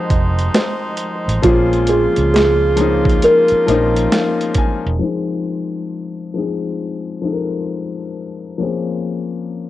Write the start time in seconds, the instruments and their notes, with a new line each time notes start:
Already playing: woodwind section D#3 F3 G#3 D#4 C5, upright piano F3 G#3 C4 D#4 F#4 G#4, kalimba D#5
0.10 fingered electric bass F1, kick, closed hi-hat
0.39 closed hi-hat
0.54 kalimba C5, snare, closed hi-hat
0.97 closed hi-hat
1.28 fingered electric bass A1, closed hi-hat
1.42 fingered electric bass A#1, woodwind section C#3 A#3 F4, upright piano F3 A#3 C4 C#4, kalimba F4, kick, closed hi-hat
1.47 upright piano G#4
1.73 closed hi-hat
1.87 kalimba G#4, closed hi-hat
2.16 fingered electric bass C#2, closed hi-hat
2.34 kalimba G#4, snare, closed hi-hat
2.76 upright piano F3 A#3 C4 C#4, closed hi-hat
2.81 upright piano D#4
3.05 kick
3.09 closed hi-hat
3.22 kalimba A#4, closed hi-hat
3.48 muted fingered electric bass stroke, closed hi-hat
3.66 fingered electric bass A#1, upright piano F3 A#3 C4 C#4 D#5, closed hi-hat
3.71 upright piano D#4
3.96 closed hi-hat
4.12 upright piano F5, snare, closed hi-hat
4.41 closed hi-hat
4.54 upright piano G#5, kick, closed hi-hat
4.86 fingered electric bass E1, closed hi-hat
4.99 upright piano F3 G#3 C4 D#4
5.04 upright piano G#4
6.34 upright piano F3 G#3 C4 D#4
6.39 upright piano G#4
7.22 upright piano F3 G#3 C4 D#4
7.26 upright piano A4
7.33 upright piano A#4
8.58 upright piano F3 A#3 C4 C#4
8.62 upright piano G#4